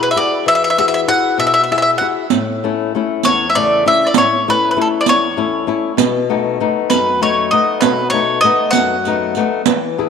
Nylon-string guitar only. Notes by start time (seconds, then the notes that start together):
Already playing: B2 E4 F#4 G#4
0.16 E4 F#4 G#4
0.46 E3
0.78 E4 F#4 G#4
1.08 E4 F#4 G#4
1.38 B2
1.71 E4 F#4 G#4
2.01 E4 F#4 G#4
2.31 A2
2.64 A3 C#4 E4
2.95 A3 C#4 E4
3.26 E2
3.56 C#3 A3 E4
3.86 A3 C#4 E4
4.15 A2
4.48 A3 C#4 E4
4.77 A3 C#4 E4
5.07 E2
5.37 A3 C#4 E4
5.67 A3 C#4 E4
5.97 B2
6.30 A3 B3 D#4
6.60 A3 B3 D#4
6.90 F#2
7.22 A3 B3 D#4
7.52 A3 B3 D#4
7.83 B2
8.13 A3 B3 D#4
8.44 A3 B3 D#4
8.74 F#2
9.06 A3 B3 D#4
9.37 A3 B3 D#4
9.67 E3
9.98 D4 E4 G#4